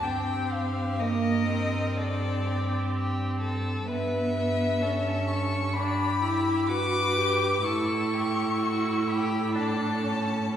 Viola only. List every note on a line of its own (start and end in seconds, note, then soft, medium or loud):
0.06 1.01 C4 soft
1.00 1.48 A#3 soft
1.48 3.84 C4 soft
3.89 4.82 B3 medium
4.81 5.74 C#4 soft
5.75 6.21 D4 medium
6.22 6.70 E4 soft
6.69 7.18 F#4 medium
7.17 7.64 G4 medium
7.65 9.57 E4 medium
9.55 10.05 D4 medium
10.03 10.51 C#4 soft
10.51 10.57 C#4 medium